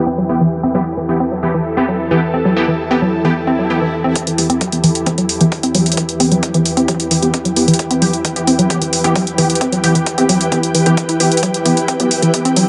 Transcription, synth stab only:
0.29 E3 B3 G4
0.75 E3 B3 G4
1.09 E3 B3 G4
1.43 E3 B3 G4
1.77 E3 B3 G4
2.11 E3 B3 G4
2.56 E3 B3 G4
2.91 E3 B3 G4
3.25 E3 B3 G4
3.70 E3 B3 G4
4.38 E3 B3 G4
4.73 E3 B3 G4
5.06 E3 B3 G4
5.41 E3 B3 G4
5.75 E3 B3 G4
6.20 E3 B3 G4
6.54 E3 B3 G4
6.88 E3 B3 G4
7.22 E3 B3 G4
7.56 E3 B3 G4
8.02 E3 B3 G4
8.36 E3 B3 G4
8.70 E3 B3 G4
9.04 E3 B3 G4
9.38 E3 B3 G4
9.84 E3 B3 G4
10.18 E3 B3 G4
10.52 E3 B3 G4
10.86 E3 B3 G4
11.20 E3 B3 G4
11.66 E3 B3 G4
12.00 E3 B3 G4
12.34 E3 B3 G4

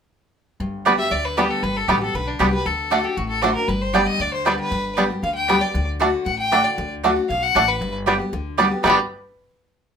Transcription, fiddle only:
0.98 E5
1.12 D5
1.25 B4
1.37 G4
1.51 A4
1.63 B4
1.77 A4
1.89 G4
2.03 A4
2.15 B4
2.28 D4
2.41 G4
2.53 B4
2.66 A4
3.04 G4
3.17 F#4
3.29 A4
3.42 C5
3.55 A#4
3.68 B4
3.82 C5
3.94 D5
4.07 D#5
4.21 D5
4.34 C5
4.47 B4
4.60 B4
5.23 F5
5.35 G5
5.61 D5
6.25 F#5
6.39 G5
6.64 D5
7.29 F5
7.43 F#5
7.68 B4
8.83 B4

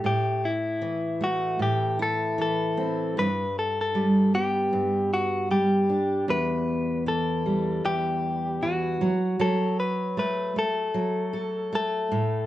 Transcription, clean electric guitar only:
0.06 G4
0.45 E4
1.24 F#4
1.62 G4
2.03 A4
2.42 A4
3.19 B4
3.59 A4
3.81 A4
4.35 G4
5.13 F#4
5.51 G4
6.30 B4
7.08 A4
7.86 G4
8.63 F#4
9.41 A4
9.80 B4
10.19 B4
10.59 A4
11.75 A4

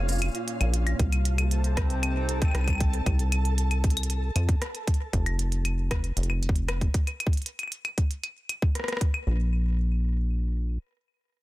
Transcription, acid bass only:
Already playing: F1
0.61 A#1
0.99 C2
2.55 C2
3.06 C2
4.36 F2
5.13 F1
6.17 F1
9.27 A#1

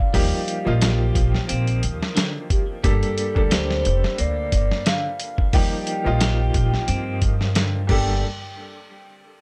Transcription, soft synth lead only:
Already playing: F5
2.51 G4
2.85 A4
3.52 C5
4.20 D5
4.86 F5
5.53 G5
7.90 G5

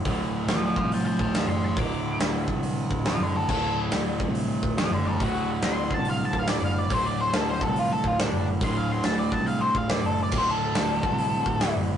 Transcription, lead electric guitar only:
0.49 C5 F5
0.66 C5 F5
0.78 C5 F5
0.94 F5 A5
1.06 F5 A5
1.21 F5 A5
1.35 A5 C6
1.49 A5 C6
1.64 A5 C6
1.79 D6
3.07 C5 F5
3.22 A4 D5
3.36 A4 C5
3.50 A4
4.78 C5 F5
4.92 A4 D5
5.08 A4 C5
5.24 F#4
5.64 C6
5.94 A5
6.10 F5
6.25 A5
6.39 F5
6.50 D5
6.65 F5
6.78 D5
6.94 C5
7.06 D5
7.21 C5
7.35 A4
7.50 C5
7.63 A4
7.79 F4
7.92 A4
8.07 F4
8.21 D4
8.64 C6
8.77 F5
8.92 C6
9.05 A5
9.19 D5
9.32 A5
9.46 F5
9.61 C5
9.77 F5
9.90 D5
10.06 A4
10.23 D5
10.38 C5
10.51 A4

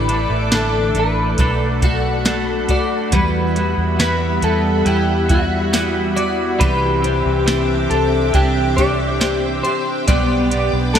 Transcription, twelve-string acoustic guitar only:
Already playing: E3 D4 A4
0.09 A3
0.52 D4
0.96 A3
1.39 A3
1.82 F#4
2.25 A3
2.69 F#4
3.12 G3
3.56 B3
3.99 E4
4.43 B3
4.87 E4
5.30 F#4
5.74 B3
6.17 F#4
6.61 E3 G4
7.04 C4
7.48 D4
7.91 C4
8.35 D4
8.78 G4
9.22 C4
9.65 G4
10.08 B3 G4
10.51 B3
10.95 D4

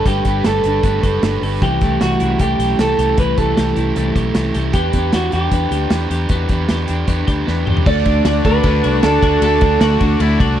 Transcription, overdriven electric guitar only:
0.05 G3 A3 D4 G4 B4
0.25 D4 G4 B4
0.44 A3 D4 G4 B4
0.65 D4 G4 B4
0.83 G3 A3 D4 G4 B4
1.03 D4 G4 B4
1.22 A3 D4 G4 B4
1.41 D4 G4 B4
1.62 C3 E3 A3 E4 G4
1.81 A3 E4 G4
2.00 E3 A3 E4 G4
2.19 A3 E4 G4
2.38 C3 E3 A3 E4 G4
2.58 A3 E4 G4
2.78 E3 A3 E4 G4
2.98 A3 E4 G4
3.17 C3 E3 A3 E4 G4
3.36 A3 E4 G4
3.57 E3 A3 E4 G4
3.77 A3 E4 G4
3.95 C3 E3 A3 E4 G4
4.15 A3 E4 G4
4.35 E3 A3 E4 G4
4.55 A3 E4 G4
4.74 E3 B3 D4 G4
4.93 B3 D4 G4
5.13 E3 B3 D4 G4
5.32 B3 D4 G4
5.52 E3 B3 D4 G4
5.72 B3 D4 G4
5.92 E3 B3 D4 G4
6.10 B3 D4 G4
6.30 E3 B3 D4 G4
6.49 B3 D4 G4
6.69 E3 B3 D4 G4
6.87 B3 D4 G4
7.07 E3 B3 D4 G4
7.27 B3 D4 G4
7.46 E3 B3 D4 G4
7.67 B3 D4 G4
7.85 D3 A3 D4 F#4
8.05 A3 D4 F#4
8.26 D3 A3 D4 F#4
8.44 A3 D4 F#4
8.63 D3 A3 D4 F#4
8.84 A3 D4 F#4
9.02 D3 A3 D4 F#4
9.22 A3 D4 F#4
9.42 D3 A3 D4 F#4
9.61 A3 D4 F#4
9.80 D3 A3 D4 F#4
10.01 A3 D4 F#4
10.20 D3 A3 D4 F#4
10.40 A3 D4 F#4

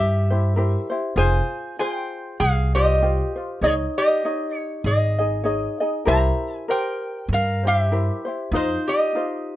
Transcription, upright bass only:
Already playing: G2
1.16 F1
2.40 C2
3.61 C#2
4.84 G#1
6.07 C2
7.29 G2
8.52 F2

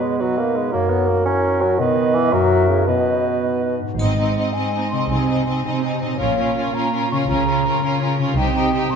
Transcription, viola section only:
4.00 C4
4.18 C4
4.38 C4
4.56 C4
4.75 C4
4.93 C4
5.12 C4
5.30 C4
5.48 C4
5.66 C4
5.84 C4
6.02 C4
6.19 C#4
6.38 C#4
6.56 C#4
6.75 C#4
6.92 C#4
7.11 C#4
7.30 C#4
7.47 C#4
7.66 C#4
7.84 C#4
8.01 C#4
8.19 C#4
8.37 D#4
8.56 D#4
8.74 D#4
8.92 D#4

